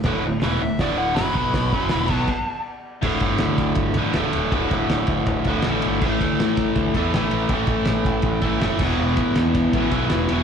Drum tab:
CC |x-------|---xx---|x-------|--------|
RD |--------|--------|-xxxxxxx|xxxxxxxx|
HH |--o-o-o-|o-o-----|--------|--------|
SD |o-o-o-o-|o-o-----|--o---o-|--o---o-|
BD |o---o--o|oo-oo---|oo-ooo--|oo-ooo--|

CC |x-------|-------x|--------|
RD |-xxxxxxx|xxxxxxx-|-xxxxxxx|
HH |--------|--------|--------|
SD |--o---o-|--o---o-|--o---o-|
BD |oo-ooo--|oo-ooo-o|-o-ooo--|